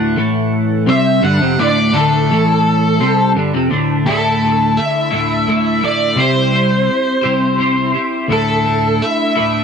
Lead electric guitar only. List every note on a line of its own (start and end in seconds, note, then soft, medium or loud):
0.90 1.24 E5 medium
1.24 1.60 F#5 medium
1.60 1.96 D5 medium
1.94 3.31 A4 medium
4.06 4.79 A4 medium
4.77 5.84 E5 medium
5.85 6.20 D5 medium
6.20 7.91 C5 medium
8.33 9.04 A4 medium
9.02 9.64 E5 medium